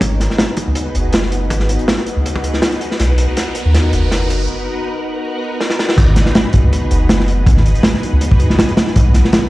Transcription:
0.01 G#1, kick, closed hi-hat, riser
0.20 snare, closed hi-hat
0.30 snare
0.38 snare, closed hi-hat
0.57 kick, closed hi-hat
0.67 C#2
0.75 closed hi-hat
0.95 F#1, closed hi-hat
1.12 snare, closed hi-hat
1.23 snare
1.32 closed hi-hat
1.50 G#1, kick, closed hi-hat
1.60 snare
1.69 closed hi-hat
1.79 closed hi-hat
1.88 snare, closed hi-hat
1.97 snare
2.06 closed hi-hat
2.16 C#2
2.26 closed hi-hat
2.36 kick
2.44 closed hi-hat
2.54 snare
2.62 snare, closed hi-hat
2.72 closed hi-hat
2.81 closed hi-hat
2.91 snare
2.99 B1, snare, closed hi-hat
3.18 closed hi-hat
3.37 snare, closed hi-hat
3.55 closed hi-hat
3.65 D#2
3.74 snare, closed hi-hat
3.93 F#1, closed hi-hat
4.11 snare, closed hi-hat
4.30 closed hi-hat
5.61 snare
5.70 snare
5.79 snare
5.89 snare
5.98 G#1, kick, closed hi-hat, crash
6.16 snare, closed hi-hat
6.26 snare
6.35 snare, closed hi-hat
6.53 kick, closed hi-hat
6.64 C#2
6.73 closed hi-hat
6.91 F#1, closed hi-hat
7.09 snare, closed hi-hat
7.20 snare
7.28 closed hi-hat
7.47 G#1, kick, closed hi-hat
7.57 snare
7.66 closed hi-hat
7.75 closed hi-hat
7.83 snare, closed hi-hat
7.94 snare
8.03 closed hi-hat
8.13 C#2
8.21 closed hi-hat
8.31 kick
8.40 closed hi-hat
8.50 snare
8.59 snare, closed hi-hat
8.69 closed hi-hat
8.77 snare, closed hi-hat
8.87 snare
8.96 B1, kick, closed hi-hat
9.14 snare, closed hi-hat
9.25 snare
9.33 snare, closed hi-hat

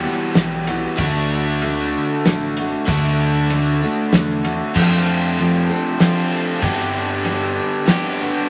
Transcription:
Already playing: E2 B2 E3 G3 B3 G4
0.05 E3 G3 B3
0.35 B1 E3 G3 B3, snare, ride
0.67 E3 G3 B3 F#4, ride
0.96 D2 D3 A3 D4 F#4, kick, ride, tambourine
1.00 A3 D4 F#4
1.47 tambourine
1.62 D3 A3 D4 F#4, ride
1.92 tambourine
2.23 A1 D3 A3, snare, ride, tambourine
2.27 D4 F#4
2.39 tambourine
2.56 D4 F#4, ride, tambourine
2.61 A3
2.86 D2 D3 A3 D4 F#4, kick, ride, tambourine
3.34 tambourine
3.49 D3 A3 D4 F#4, ride
3.67 tambourine
3.82 A3 D4 F#4, tambourine
4.12 E2 D3 A3 D4 F#4, snare, ride
4.44 A3 D4 F#4, ride
4.75 F2 C3 F3 A3 C4 D4 F4 A4, kick, crash, tambourine
5.38 F3 C4 D4 A4, ride, tambourine
5.69 C4 D4 A4, tambourine
6.00 F2 C3 F3 A3 C4 D4 F4 A4, snare, ride
6.34 tambourine
6.49 tambourine
6.61 G2 D3 G3 B3 D4 G4, kick, ride, tambourine
6.65 D4
7.25 G3 B3 D4, ride, tambourine
7.58 tambourine
7.86 G2 D3 G3 B3 D4 G4, snare, ride
7.90 B3 D4
8.21 B3 D4 F#4, tambourine
8.37 tambourine

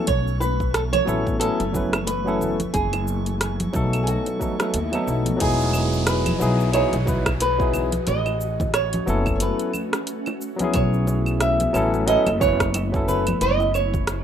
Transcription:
Already playing: A3 C#6
0.07 B1 E3 B3 C#5, kick, closed hi-hat, high bongo, cabasa
0.27 cabasa
0.40 B4, high bongo, cabasa
0.60 kick, cabasa
0.74 A4, cross-stick, closed hi-hat, cabasa
0.93 C#5, closed hi-hat, high bongo, high conga, cabasa, claves
1.05 A1 F#3 B3 C#4 E4 A4, cabasa
1.27 kick, high bongo, cabasa
1.39 F#3 B3 C#4 E4 A4, closed hi-hat, cabasa
1.60 F#1, closed hi-hat, cabasa
1.73 F#3 B3 C#4 E4 B4, kick, high bongo, high conga, low conga, cabasa
1.93 cross-stick, closed hi-hat, cabasa, claves
2.07 B4, closed hi-hat, high bongo, cabasa
2.25 F#3 B3 C#4 E4 A4, cabasa
2.41 low conga, cabasa
2.60 closed hi-hat, high bongo, high conga, cabasa
2.73 F#1 F#3 A3 G#4 G#5, kick, closed hi-hat, cabasa
2.93 closed hi-hat, high bongo, cabasa, claves
3.08 cabasa
3.26 closed hi-hat, cabasa
3.41 cross-stick, closed hi-hat, high bongo, cabasa
3.60 closed hi-hat, high conga, cabasa
3.73 B1 F#3 A3 B3 D#4 A4, kick, high bongo, cabasa
3.93 closed hi-hat, cabasa, claves
4.03 G#4
4.07 A3 B3 D#4 F#4, closed hi-hat, swell, cabasa
4.26 closed hi-hat, high bongo, cabasa
4.39 F#3 A3 B3 D#4 A4, kick, high conga, cabasa
4.59 F#3 A3 B3 D#4 A4, cross-stick, closed hi-hat, high bongo, cabasa
4.74 D#2, closed hi-hat, cabasa
4.92 F#3 A3 B3 D#4 A4, closed hi-hat, cabasa, claves
5.07 B1, high bongo, cabasa
5.26 closed hi-hat, high conga, cabasa
5.37 E3 F#3 B3 D#4 F#4 G#4 D#5, closed hi-hat, downlifter
5.41 E1 E4 G#4, kick, cabasa
5.60 cabasa
5.73 high bongo, cabasa, claves
5.94 cabasa
6.07 B4, cross-stick, closed hi-hat, high bongo, cabasa
6.26 closed hi-hat, high conga, cabasa, claves
6.39 B1 F#3 B3 D#4 E4 G#4, cabasa
6.60 high bongo, cabasa
6.72 F#3 B3 D#4 E4 G#4 C#5, closed hi-hat, cabasa, claves
6.93 B1, closed hi-hat, high bongo, cabasa
7.05 F#3 B3 D#4 E4 B4, kick, high conga, low conga, cabasa
7.26 kick, cross-stick, closed hi-hat, cabasa, claves
7.40 B4, closed hi-hat, high bongo, cabasa
7.58 F#3 B3 D#4 E4 G#4, kick, cabasa
7.73 high bongo, low conga, cabasa, claves
7.92 closed hi-hat, high conga, cabasa
8.07 A1 A3 C#4 D#5, closed hi-hat, cabasa
8.26 high bongo, cabasa, claves
8.41 cabasa
8.60 kick, high bongo, low conga, cabasa
8.74 C#5, cross-stick, closed hi-hat, cabasa, claves
8.93 closed hi-hat, high conga, cabasa
9.06 F#1 F#3 B3 C#4 E4 A4, high bongo, cabasa
9.26 kick, cabasa, claves
9.36 C#5
9.40 B4, closed hi-hat, high bongo, cabasa
9.59 closed hi-hat, cabasa
9.73 high conga, cabasa, claves
9.93 cross-stick, closed hi-hat, high bongo, cabasa
10.07 closed hi-hat, cabasa
10.26 high bongo, cabasa, claves
10.41 cabasa
10.56 F#3 B3 C#4, closed hi-hat, high conga, cabasa
10.62 E4 G#4
10.74 B1 B3 E4 C#5, kick, closed hi-hat, high bongo, cabasa, claves
10.94 cabasa
11.07 high bongo, cabasa
11.26 cabasa, claves
11.40 E5, cross-stick, closed hi-hat, cabasa
11.60 closed hi-hat, high bongo, high conga, cabasa
11.73 A1 F#3 B3 C#4 E4 A4, cabasa, claves
11.94 high bongo, cabasa
12.06 F#3 B3 C#4 E4 A4 D#5, closed hi-hat, cabasa
12.26 F#1, closed hi-hat, cabasa, claves
12.39 F#3 B3 C#4 E4 B4 C#5, kick, high bongo, high conga, low conga, cabasa
12.60 kick, cross-stick, closed hi-hat, cabasa
12.74 closed hi-hat, high bongo, cabasa, claves
12.92 F#3 B3 C#4 E4 A4, kick, cabasa
13.08 B4, low conga, cabasa
13.27 closed hi-hat, high bongo, high conga, cabasa, claves
13.41 F#1 F#3 A3 G#4 D#5, closed hi-hat, cabasa
13.60 high bongo, cabasa
13.74 C#5, cabasa, claves
13.94 kick, low conga, cabasa
14.07 cross-stick, closed hi-hat, high bongo, cabasa

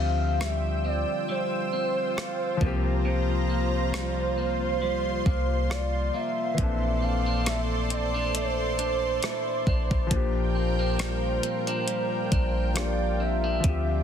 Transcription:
Already playing: D2 D3 F3 G3 C4 F4 G4 C5 F5 G5 E6
0.41 G3 E5, cross-stick
0.85 C4 D5
1.29 G3 C5
1.73 C4
2.17 F4, cross-stick
2.57 F3 A#3, kick
2.61 C2 C3 C4 A#5
2.66 G4
3.05 C3 C5
3.49 A#3
3.94 G3, cross-stick
4.38 A#3 C6
4.82 G3
5.26 C2 A#3, kick
5.70 F4 D5, cross-stick
6.14 A#3 E5
6.54 E3 C4
6.58 A#1 A#2 D4 A4 C5 D5 C6, kick, closed hi-hat
6.63 A4
7.02 C4 F5
7.26 D4
7.46 A3 E5, cross-stick, closed hi-hat
7.90 C4 D5, closed hi-hat
8.14 D4
8.35 A3 C5, closed hi-hat
8.79 D4, closed hi-hat
9.23 E4, cross-stick, closed hi-hat
9.67 A#1 D4, kick
9.91 A#1, kick
10.07 F3 A#3 F4 A#4 G5
10.11 A#1 A#2 D4 C5, kick, closed hi-hat
10.16 G4
10.55 C4
10.79 D4
10.99 G3, cross-stick, closed hi-hat
11.43 C4, closed hi-hat
11.67 D4, closed hi-hat
11.87 G3 G5, closed hi-hat
12.32 A#1 D4, kick, closed hi-hat
12.74 F3 A#3 D4 F4 D5, cross-stick, closed hi-hat
12.79 G4
13.20 C4 E5
13.44 D4
13.60 D3 F3 C4 D5, kick, closed hi-hat
13.64 D2 F4 C5 G5
13.69 G4

